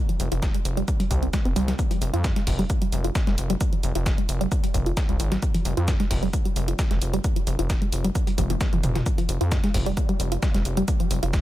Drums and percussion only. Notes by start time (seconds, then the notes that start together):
0.09 closed hi-hat
0.20 open hi-hat, shaker
0.32 closed hi-hat
0.42 kick, snare, closed hi-hat, shaker
0.54 closed hi-hat
0.65 open hi-hat, shaker
0.77 closed hi-hat
0.88 kick, closed hi-hat, shaker
1.00 closed hi-hat
1.11 kick, open hi-hat, shaker
1.23 closed hi-hat
1.33 kick, snare, closed hi-hat, shaker
1.45 closed hi-hat
1.56 open hi-hat, shaker
1.68 snare, closed hi-hat
1.79 kick, closed hi-hat, shaker
1.91 closed hi-hat
2.02 open hi-hat, shaker
2.14 closed hi-hat
2.24 kick, snare, closed hi-hat, shaker
2.36 snare, closed hi-hat
2.47 kick, open hi-hat
2.59 closed hi-hat
2.70 kick, closed hi-hat, shaker
2.82 closed hi-hat
2.92 open hi-hat, shaker
3.04 closed hi-hat
3.15 kick, snare, closed hi-hat, shaker
3.27 snare, closed hi-hat
3.38 open hi-hat, shaker
3.50 closed hi-hat
3.61 kick, closed hi-hat, shaker
3.73 closed hi-hat
3.83 open hi-hat, shaker
3.95 closed hi-hat
4.06 kick, snare, closed hi-hat, shaker
4.18 closed hi-hat
4.29 open hi-hat, shaker
4.41 closed hi-hat
4.52 kick, closed hi-hat, shaker
4.64 closed hi-hat
4.74 kick, open hi-hat, shaker
4.86 closed hi-hat
4.97 kick, snare, closed hi-hat, shaker
5.09 closed hi-hat
5.20 open hi-hat, shaker
5.32 snare, closed hi-hat
5.42 kick, closed hi-hat, shaker
5.54 closed hi-hat
5.65 open hi-hat, shaker
5.77 closed hi-hat
5.88 kick, snare, closed hi-hat, shaker
6.00 snare, closed hi-hat
6.11 kick, open hi-hat
6.23 closed hi-hat
6.33 kick, closed hi-hat, shaker
6.45 closed hi-hat
6.56 open hi-hat, shaker
6.68 closed hi-hat
6.79 kick, snare, closed hi-hat, shaker
6.91 snare, closed hi-hat
7.02 open hi-hat, shaker
7.14 closed hi-hat
7.24 kick, closed hi-hat, shaker
7.36 closed hi-hat
7.47 open hi-hat, shaker
7.59 closed hi-hat
7.70 kick, snare, closed hi-hat, shaker
7.82 closed hi-hat
7.92 open hi-hat, shaker
8.04 closed hi-hat
8.15 kick, closed hi-hat, shaker
8.27 closed hi-hat, open hi-hat
8.38 kick, open hi-hat, high tom, shaker
8.50 closed hi-hat, high tom
8.61 kick, snare, closed hi-hat, mid tom, shaker
8.73 closed hi-hat, mid tom
8.83 mid tom, open hi-hat, shaker
8.95 snare, closed hi-hat, mid tom
9.06 kick, closed hi-hat, shaker
9.18 closed hi-hat
9.29 open hi-hat, shaker
9.41 closed hi-hat
9.52 kick, snare, closed hi-hat, shaker
9.64 snare, closed hi-hat
9.74 kick, open hi-hat
9.86 closed hi-hat
9.97 kick, closed hi-hat, shaker
10.09 closed hi-hat
10.20 open hi-hat, shaker
10.32 closed hi-hat
10.43 kick, snare, closed hi-hat, shaker
10.54 snare, closed hi-hat
10.65 open hi-hat, shaker
10.77 closed hi-hat
10.88 kick, closed hi-hat, shaker
11.00 closed hi-hat
11.11 open hi-hat, shaker
11.23 closed hi-hat
11.33 kick, snare, closed hi-hat, shaker